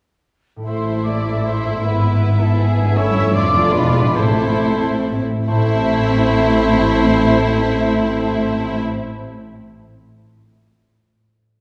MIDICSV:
0, 0, Header, 1, 12, 480
1, 0, Start_track
1, 0, Key_signature, 0, "minor"
1, 0, Tempo, 385356
1, 836, Time_signature, 3, 2, 24, 8
1, 4658, Tempo, 432900
1, 13381, End_track
2, 0, Start_track
2, 0, Title_t, "Flute section"
2, 0, Program_c, 0, 73
2, 819, Note_on_c, 0, 84, 55
2, 1284, Note_off_c, 0, 84, 0
2, 1304, Note_on_c, 0, 86, 51
2, 1795, Note_on_c, 0, 84, 53
2, 1796, Note_off_c, 0, 86, 0
2, 2262, Note_on_c, 0, 83, 62
2, 2271, Note_off_c, 0, 84, 0
2, 2977, Note_on_c, 0, 81, 56
2, 2985, Note_off_c, 0, 83, 0
2, 3217, Note_on_c, 0, 80, 74
2, 3221, Note_off_c, 0, 81, 0
2, 3683, Note_off_c, 0, 80, 0
2, 3690, Note_on_c, 0, 88, 94
2, 4156, Note_on_c, 0, 86, 80
2, 4165, Note_off_c, 0, 88, 0
2, 4642, Note_off_c, 0, 86, 0
2, 4657, Note_on_c, 0, 83, 83
2, 5103, Note_on_c, 0, 81, 73
2, 5121, Note_off_c, 0, 83, 0
2, 6065, Note_off_c, 0, 81, 0
2, 6579, Note_on_c, 0, 81, 80
2, 10290, Note_off_c, 0, 81, 0
2, 13381, End_track
3, 0, Start_track
3, 0, Title_t, "Oboe"
3, 0, Program_c, 1, 68
3, 829, Note_on_c, 1, 76, 42
3, 3699, Note_on_c, 1, 73, 56
3, 3717, Note_off_c, 1, 76, 0
3, 4169, Note_on_c, 1, 74, 53
3, 4187, Note_off_c, 1, 73, 0
3, 5121, Note_on_c, 1, 72, 55
3, 5138, Note_off_c, 1, 74, 0
3, 6339, Note_off_c, 1, 72, 0
3, 6583, Note_on_c, 1, 72, 70
3, 10292, Note_off_c, 1, 72, 0
3, 13381, End_track
4, 0, Start_track
4, 0, Title_t, "Violin section"
4, 0, Program_c, 2, 48
4, 841, Note_on_c, 2, 72, 41
4, 1295, Note_off_c, 2, 72, 0
4, 1330, Note_on_c, 2, 74, 45
4, 1808, Note_off_c, 2, 74, 0
4, 1818, Note_on_c, 2, 72, 45
4, 2282, Note_off_c, 2, 72, 0
4, 2296, Note_on_c, 2, 71, 50
4, 2988, Note_off_c, 2, 71, 0
4, 2988, Note_on_c, 2, 69, 55
4, 3227, Note_off_c, 2, 69, 0
4, 3237, Note_on_c, 2, 68, 61
4, 3702, Note_off_c, 2, 68, 0
4, 3705, Note_on_c, 2, 76, 75
4, 4172, Note_off_c, 2, 76, 0
4, 4177, Note_on_c, 2, 74, 69
4, 4653, Note_off_c, 2, 74, 0
4, 4669, Note_on_c, 2, 71, 67
4, 5127, Note_off_c, 2, 71, 0
4, 5136, Note_on_c, 2, 69, 58
4, 6101, Note_off_c, 2, 69, 0
4, 6594, Note_on_c, 2, 76, 64
4, 10297, Note_off_c, 2, 76, 0
4, 13381, End_track
5, 0, Start_track
5, 0, Title_t, "Clarinet"
5, 0, Program_c, 3, 71
5, 846, Note_on_c, 3, 64, 41
5, 3655, Note_off_c, 3, 64, 0
5, 3707, Note_on_c, 3, 64, 57
5, 4179, Note_on_c, 3, 65, 59
5, 4198, Note_off_c, 3, 64, 0
5, 5127, Note_on_c, 3, 64, 54
5, 5144, Note_off_c, 3, 65, 0
5, 6342, Note_off_c, 3, 64, 0
5, 6575, Note_on_c, 3, 64, 66
5, 10288, Note_off_c, 3, 64, 0
5, 13381, End_track
6, 0, Start_track
6, 0, Title_t, "Violin section"
6, 0, Program_c, 4, 48
6, 859, Note_on_c, 4, 64, 38
6, 3662, Note_off_c, 4, 64, 0
6, 3691, Note_on_c, 4, 64, 51
6, 4132, Note_off_c, 4, 64, 0
6, 4174, Note_on_c, 4, 65, 52
6, 5079, Note_off_c, 4, 65, 0
6, 5122, Note_on_c, 4, 64, 51
6, 6295, Note_off_c, 4, 64, 0
6, 6576, Note_on_c, 4, 64, 60
6, 10288, Note_off_c, 4, 64, 0
6, 13381, End_track
7, 0, Start_track
7, 0, Title_t, "Harp"
7, 0, Program_c, 5, 46
7, 702, Note_on_c, 5, 45, 33
7, 723, Note_on_c, 5, 57, 27
7, 745, Note_on_c, 5, 64, 27
7, 778, Note_on_c, 5, 76, 28
7, 2056, Note_on_c, 5, 44, 37
7, 2112, Note_on_c, 5, 59, 30
7, 2149, Note_off_c, 5, 64, 0
7, 2164, Note_on_c, 5, 64, 31
7, 2207, Note_off_c, 5, 76, 0
7, 2222, Note_on_c, 5, 76, 31
7, 2278, Note_off_c, 5, 57, 0
7, 2304, Note_off_c, 5, 45, 0
7, 3471, Note_on_c, 5, 43, 49
7, 3529, Note_on_c, 5, 57, 42
7, 3572, Note_off_c, 5, 64, 0
7, 3587, Note_on_c, 5, 64, 40
7, 3603, Note_off_c, 5, 44, 0
7, 3631, Note_off_c, 5, 59, 0
7, 3644, Note_on_c, 5, 73, 41
7, 3943, Note_on_c, 5, 41, 53
7, 3982, Note_off_c, 5, 57, 0
7, 3997, Note_on_c, 5, 57, 47
7, 4053, Note_on_c, 5, 65, 50
7, 4074, Note_off_c, 5, 43, 0
7, 4107, Note_on_c, 5, 74, 43
7, 4132, Note_off_c, 5, 64, 0
7, 4156, Note_off_c, 5, 76, 0
7, 4160, Note_off_c, 5, 73, 0
7, 4436, Note_on_c, 5, 40, 54
7, 4492, Note_on_c, 5, 56, 47
7, 4533, Note_off_c, 5, 65, 0
7, 4548, Note_on_c, 5, 65, 45
7, 4566, Note_off_c, 5, 41, 0
7, 4590, Note_off_c, 5, 74, 0
7, 4593, Note_off_c, 5, 57, 0
7, 4605, Note_on_c, 5, 74, 47
7, 4920, Note_on_c, 5, 45, 47
7, 4970, Note_on_c, 5, 57, 37
7, 5020, Note_on_c, 5, 64, 40
7, 5042, Note_off_c, 5, 40, 0
7, 5067, Note_off_c, 5, 56, 0
7, 5071, Note_on_c, 5, 72, 41
7, 5092, Note_off_c, 5, 65, 0
7, 5117, Note_off_c, 5, 74, 0
7, 6498, Note_off_c, 5, 45, 0
7, 6582, Note_on_c, 5, 45, 49
7, 6648, Note_off_c, 5, 57, 0
7, 6662, Note_on_c, 5, 57, 55
7, 6722, Note_off_c, 5, 64, 0
7, 6735, Note_on_c, 5, 64, 53
7, 6802, Note_off_c, 5, 72, 0
7, 6893, Note_on_c, 5, 76, 49
7, 11068, Note_off_c, 5, 45, 0
7, 11107, Note_off_c, 5, 57, 0
7, 11144, Note_off_c, 5, 64, 0
7, 11223, Note_off_c, 5, 76, 0
7, 13381, End_track
8, 0, Start_track
8, 0, Title_t, "French horn section"
8, 0, Program_c, 6, 60
8, 850, Note_on_c, 6, 64, 37
8, 856, Note_on_c, 6, 57, 37
8, 1764, Note_off_c, 6, 64, 0
8, 1768, Note_off_c, 6, 57, 0
8, 1788, Note_on_c, 6, 64, 37
8, 1804, Note_on_c, 6, 57, 38
8, 2267, Note_off_c, 6, 64, 0
8, 2275, Note_off_c, 6, 57, 0
8, 2301, Note_on_c, 6, 59, 43
8, 2303, Note_on_c, 6, 64, 43
8, 3217, Note_off_c, 6, 64, 0
8, 3229, Note_off_c, 6, 59, 0
8, 3232, Note_on_c, 6, 64, 46
8, 3244, Note_on_c, 6, 59, 51
8, 3337, Note_off_c, 6, 64, 0
8, 3471, Note_on_c, 6, 62, 54
8, 3697, Note_off_c, 6, 59, 0
8, 3698, Note_off_c, 6, 62, 0
8, 3700, Note_on_c, 6, 61, 55
8, 3707, Note_on_c, 6, 57, 59
8, 4169, Note_on_c, 6, 62, 61
8, 4170, Note_off_c, 6, 57, 0
8, 4170, Note_off_c, 6, 61, 0
8, 4184, Note_on_c, 6, 57, 57
8, 4643, Note_off_c, 6, 62, 0
8, 4657, Note_off_c, 6, 57, 0
8, 4658, Note_on_c, 6, 62, 60
8, 4663, Note_on_c, 6, 56, 60
8, 5102, Note_on_c, 6, 57, 53
8, 5107, Note_on_c, 6, 60, 57
8, 5112, Note_off_c, 6, 62, 0
8, 5115, Note_off_c, 6, 56, 0
8, 6305, Note_off_c, 6, 57, 0
8, 6308, Note_off_c, 6, 60, 0
8, 6588, Note_on_c, 6, 57, 62
8, 6591, Note_on_c, 6, 60, 67
8, 10294, Note_off_c, 6, 57, 0
8, 10296, Note_off_c, 6, 60, 0
8, 13381, End_track
9, 0, Start_track
9, 0, Title_t, "Viola section"
9, 0, Program_c, 7, 48
9, 832, Note_on_c, 7, 57, 36
9, 842, Note_on_c, 7, 64, 35
9, 2235, Note_off_c, 7, 57, 0
9, 2281, Note_on_c, 7, 59, 38
9, 3647, Note_off_c, 7, 59, 0
9, 3653, Note_off_c, 7, 64, 0
9, 3697, Note_on_c, 7, 57, 52
9, 3699, Note_on_c, 7, 61, 52
9, 4136, Note_off_c, 7, 61, 0
9, 4186, Note_on_c, 7, 62, 58
9, 4607, Note_off_c, 7, 57, 0
9, 4668, Note_on_c, 7, 56, 53
9, 5085, Note_off_c, 7, 62, 0
9, 5094, Note_off_c, 7, 56, 0
9, 5114, Note_on_c, 7, 57, 51
9, 5117, Note_on_c, 7, 60, 53
9, 6291, Note_off_c, 7, 57, 0
9, 6293, Note_off_c, 7, 60, 0
9, 6580, Note_on_c, 7, 60, 61
9, 6586, Note_on_c, 7, 64, 61
9, 10291, Note_off_c, 7, 60, 0
9, 10294, Note_off_c, 7, 64, 0
9, 13381, End_track
10, 0, Start_track
10, 0, Title_t, "Bassoon"
10, 0, Program_c, 8, 70
10, 852, Note_on_c, 8, 57, 35
10, 2295, Note_on_c, 8, 59, 41
10, 2314, Note_off_c, 8, 57, 0
10, 3696, Note_off_c, 8, 59, 0
10, 3704, Note_on_c, 8, 57, 52
10, 4670, Note_on_c, 8, 56, 56
10, 4687, Note_off_c, 8, 57, 0
10, 5123, Note_on_c, 8, 57, 49
10, 5140, Note_off_c, 8, 56, 0
10, 6340, Note_off_c, 8, 57, 0
10, 6583, Note_on_c, 8, 57, 64
10, 10292, Note_off_c, 8, 57, 0
10, 13381, End_track
11, 0, Start_track
11, 0, Title_t, "Cello section"
11, 0, Program_c, 10, 48
11, 829, Note_on_c, 10, 45, 37
11, 2233, Note_off_c, 10, 45, 0
11, 2274, Note_on_c, 10, 44, 45
11, 3665, Note_off_c, 10, 44, 0
11, 3698, Note_on_c, 10, 43, 54
11, 4167, Note_on_c, 10, 41, 63
11, 4169, Note_off_c, 10, 43, 0
11, 4648, Note_off_c, 10, 41, 0
11, 4650, Note_on_c, 10, 40, 61
11, 5108, Note_on_c, 10, 45, 54
11, 5109, Note_off_c, 10, 40, 0
11, 6308, Note_off_c, 10, 45, 0
11, 6571, Note_on_c, 10, 45, 63
11, 10286, Note_off_c, 10, 45, 0
11, 13381, End_track
12, 0, Start_track
12, 0, Title_t, "Double bass section"
12, 0, Program_c, 11, 48
12, 834, Note_on_c, 11, 33, 37
12, 2236, Note_off_c, 11, 33, 0
12, 2280, Note_on_c, 11, 32, 47
12, 3668, Note_off_c, 11, 32, 0
12, 3709, Note_on_c, 11, 31, 57
12, 4174, Note_off_c, 11, 31, 0
12, 4185, Note_on_c, 11, 29, 63
12, 4657, Note_off_c, 11, 29, 0
12, 4660, Note_on_c, 11, 28, 66
12, 5114, Note_off_c, 11, 28, 0
12, 5131, Note_on_c, 11, 33, 55
12, 6319, Note_off_c, 11, 33, 0
12, 6586, Note_on_c, 11, 33, 67
12, 10294, Note_off_c, 11, 33, 0
12, 13381, End_track
0, 0, End_of_file